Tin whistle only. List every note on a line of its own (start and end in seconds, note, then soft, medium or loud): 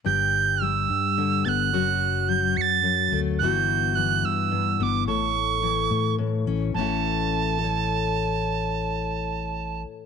0.06 0.64 G6 medium
0.62 1.46 E6 medium
1.45 2.30 F#6 medium
1.45 1.49 A6 medium
2.29 2.58 G6 medium
2.57 2.62 C#7 medium
2.61 3.20 A6 medium
3.39 3.97 G6 medium
3.95 4.27 F#6 medium
4.25 4.79 E6 medium
4.79 5.07 D6 medium
4.79 4.84 E6 medium
5.07 6.15 C#6 medium
6.74 9.82 A5 medium